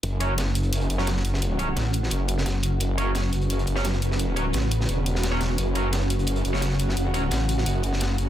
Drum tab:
HH |x-x-x-xxxxx-x-x-|x-x-x-x-x-x-x-x-|x-x-x-xxxxx-x-x-|x-x-x-x-x-x-x-x-|
SD |----o------ooo-o|----o--o---oo---|----o------ooo-o|----o--o---oo-o-|

HH |x-x-x-xxxxx-x-x-|x-x-x-x-x-x-x-x-|
SD |----o------ooo-o|----o--o---oo---|